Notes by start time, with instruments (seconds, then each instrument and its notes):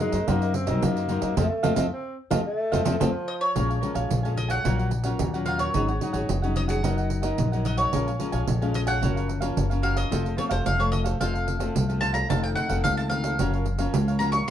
Already playing: nylon-string guitar C3
0.00 nylon-string guitar F#3 A#3 D#4, tenor saxophone G#3, muted cavaquinho stroke, pandeiro
0.12 upright bass F#2, cavaquinho A#4 C5 D#5, pandeiro
0.28 upright bass F#2, nylon-string guitar C3 F#3 A#3 D#4, tenor saxophone A#3, cavaquinho F#4 A#4 C5 D#5, pandeiro
0.42 cavaquinho A#4 C5 D#5, pandeiro
0.54 tenor saxophone C4, muted cavaquinho stroke, pandeiro
0.67 upright bass C2, nylon-string guitar F#3 A#3 D#4, cavaquinho A#4 C5 D#5, pandeiro
0.82 upright bass F#2, nylon-string guitar C3, tenor saxophone A#3, pandeiro
0.97 cavaquinho A#4 C5 D#5, pandeiro
1.09 nylon-string guitar F#3 A#3 D#4, cavaquinho F#4 A#4 C5 D#5, pandeiro
1.22 upright bass F#2, cavaquinho A#4 C5 D#5, pandeiro
1.37 upright bass F2, nylon-string guitar F3 A3 C4, tenor saxophone A3, cavaquinho C5 D#5 F5, pandeiro
1.63 upright bass F2, nylon-string guitar F3 A3 C4, cavaquinho C5 D#5 F5, pandeiro
1.76 upright bass F2, nylon-string guitar F3 A3 C4, cavaquinho C5 D#5 F5, pandeiro
1.93 tenor saxophone C4
2.30 upright bass F2, nylon-string guitar F3 A3 C4, cavaquinho C5 D#5 F5, pandeiro
2.46 tenor saxophone A3
2.72 upright bass F2, nylon-string guitar F3 A3 C4, cavaquinho C5 D#5 F5, pandeiro
2.85 upright bass F2, nylon-string guitar F3 A3 C4, cavaquinho C5 D#5 F5, pandeiro
3.00 upright bass F2, nylon-string guitar F3 A3 C4, tenor saxophone F3, cavaquinho C5 D#5 F5, pandeiro
3.28 mandolin D#5
3.41 mandolin C#5
3.55 upright bass A#1, nylon-string guitar A#2 F3 G#3 C#4, cavaquinho A#4 C#5 F5 G#5, pandeiro
3.69 cavaquinho C#5 F5 G#5, pandeiro
3.81 nylon-string guitar F3 G#3 C#4, cavaquinho A#4 C#5 F5 G#5, pandeiro
3.94 upright bass A#1, cavaquinho C#5 F5 G#5, pandeiro
4.10 upright bass A#1, nylon-string guitar F2, pandeiro
4.23 nylon-string guitar F3 G#3 C#4, cavaquinho C#5 F5 G#5, pandeiro
4.36 mandolin D#5, muted cavaquinho stroke, pandeiro
4.48 cavaquinho C#5 F5 G#5, mandolin F#5, pandeiro
4.64 upright bass A#1, nylon-string guitar A#2 F#3 C#4 F4, cavaquinho F4 A#4 C#5 F#5, pandeiro
4.79 cavaquinho A#4 C#5 F#5, pandeiro
4.91 muted cavaquinho stroke, pandeiro
5.04 nylon-string guitar F#3 C#4 F4, cavaquinho A#4 C#5 F#5, pandeiro
5.19 upright bass D#2, nylon-string guitar A#2, pandeiro
5.34 nylon-string guitar F#3 C#4 F4, cavaquinho A#4 C#5 F#5, pandeiro
5.46 cavaquinho F4 A#4 C#5 F#5, mandolin F5, pandeiro
5.58 cavaquinho A#4 C#5 F#5, mandolin C#5, pandeiro
5.74 upright bass G#1, nylon-string guitar G#2 F#3 C#4 D#4, cavaquinho D#4 G#4 C#5 F#5, pandeiro
5.88 cavaquinho G#4 C#5 F#5, pandeiro
6.01 nylon-string guitar F#3 C#4 D#4, cavaquinho D#4 G#4 C#5 F#5, pandeiro
6.13 upright bass G#1, cavaquinho G#4 C#5 F#5, pandeiro
6.29 upright bass F1, nylon-string guitar D#3, pandeiro
6.42 nylon-string guitar F#3 C#4 D#4, cavaquinho G#4 C#5 F#5, pandeiro
6.55 mandolin D#5, muted cavaquinho stroke, pandeiro
6.68 cavaquinho G#4 C#5 F#5, mandolin F#5, pandeiro
6.83 upright bass F#1, nylon-string guitar F#2 F#3 A#3 D#4, cavaquinho F#4 A#4 D#5 F#5, pandeiro
6.97 cavaquinho A#4 D#5 F#5, pandeiro
7.10 muted cavaquinho stroke, pandeiro
7.22 nylon-string guitar F#3 A#3 D#4, cavaquinho A#4 D#5 F#5, pandeiro
7.38 upright bass A#1, nylon-string guitar F#2, pandeiro
7.52 nylon-string guitar F#3 A#3 D#4, cavaquinho A#4 D#5 F#5, pandeiro
7.65 cavaquinho F#4 A#4 D#5 F#5, mandolin D#5, pandeiro
7.77 cavaquinho A#4 D#5 F#5, mandolin C#5, pandeiro
7.93 upright bass A#1, nylon-string guitar A#2 F3 G#3 C#4, cavaquinho A#4 C#5 F5 G#5, pandeiro
8.07 cavaquinho C#5 F5 G#5, pandeiro
8.19 nylon-string guitar F3 G#3 C#4, cavaquinho A#4 C#5 F5 G#5, pandeiro
8.32 upright bass A#1, cavaquinho C#5 F5 G#5, pandeiro
8.47 upright bass A#1, nylon-string guitar F2, pandeiro
8.62 nylon-string guitar F3 G#3 C#4, cavaquinho C#5 F5 G#5, pandeiro
8.74 mandolin D#5, muted cavaquinho stroke, pandeiro
8.87 cavaquinho C#5 F5 G#5, mandolin F#5, pandeiro
9.02 upright bass F#1, nylon-string guitar F#2 F3 A#3 C#4, cavaquinho F#4 A#4 C#5 F5, pandeiro
9.16 cavaquinho A#4 C#5 F5, pandeiro
9.28 muted cavaquinho stroke, pandeiro
9.41 nylon-string guitar F3 A#3 C#4, cavaquinho A#4 C#5 F5, pandeiro
9.56 upright bass F#1, nylon-string guitar C#3, pandeiro
9.70 nylon-string guitar F3 A#3 C#4, cavaquinho A#4 C#5 F5, pandeiro
9.82 cavaquinho F#4 A#4 C#5 F5, mandolin F5, pandeiro
9.96 cavaquinho A#4 C#5 F5, mandolin D#5, pandeiro
10.11 upright bass F1, nylon-string guitar F2 F3 A3 C4, cavaquinho F4 A4 C5 F5, pandeiro
10.25 cavaquinho A4 C5 F5, pandeiro
10.36 nylon-string guitar F3 A3 C4, cavaquinho F4 A4 C5 F5, mandolin C#5, pandeiro
10.49 upright bass F1, cavaquinho A4 C5 F5, mandolin C5, pandeiro
10.65 upright bass F1, nylon-string guitar C3, mandolin F5, pandeiro
10.79 nylon-string guitar F3 A3 C4, cavaquinho A4 C5 F5, mandolin C#5, pandeiro
10.92 mandolin D#5, muted cavaquinho stroke, pandeiro
11.04 cavaquinho A4 C5 F5, pandeiro
11.20 upright bass F1, nylon-string guitar F2 F3 A3 C4, cavaquinho F4 A4 C5 F5, mandolin F5, pandeiro
11.34 cavaquinho A4 C5 F5, pandeiro
11.47 muted cavaquinho stroke, pandeiro
11.59 nylon-string guitar F3 A3 C4, cavaquinho A4 C5 F5, pandeiro
11.75 upright bass C2, nylon-string guitar C3, pandeiro
11.89 nylon-string guitar F3 A3 C4, cavaquinho A4 C5 F5, pandeiro
12.01 cavaquinho F4 A4 C5 F5, mandolin A5, pandeiro
12.13 cavaquinho A4 C5 F5, mandolin A#5, pandeiro
12.29 upright bass F1, nylon-string guitar F2 D#3 A3 C4, cavaquinho D#4 A4 C5 F5, mandolin A5, pandeiro
12.43 cavaquinho A4 C5 F5, mandolin G5, pandeiro
12.56 cavaquinho D#4 A4 C5 F5, mandolin F#5, pandeiro
12.69 upright bass F1, nylon-string guitar D#3 A3 C4, cavaquinho A4 C5 F5, pandeiro
12.84 upright bass C#2, nylon-string guitar C3, mandolin F5, pandeiro
12.97 cavaquinho A4 C5 F5, mandolin A5, pandeiro
13.10 nylon-string guitar D#3 A3 C4, mandolin F5, muted cavaquinho stroke, pandeiro
13.24 cavaquinho A4 C5 F5, pandeiro
13.39 upright bass F#1, nylon-string guitar F#2 F3 A#3 C#4, cavaquinho F#4 A#4 C#5 F5, pandeiro
13.53 cavaquinho A#4 C#5 F5, pandeiro
13.66 muted cavaquinho stroke, pandeiro
13.79 nylon-string guitar F3 A#3 C#4, cavaquinho A#4 C#5 F5, pandeiro
13.94 upright bass C#2, nylon-string guitar C#3, pandeiro
14.08 cavaquinho A#4 C#5 F5, pandeiro
14.19 nylon-string guitar F3 A#3 C#4, cavaquinho F#4 A#4 C#5 F5, mandolin A#5, pandeiro
14.32 cavaquinho A#4 C#5 F5, mandolin C#6, pandeiro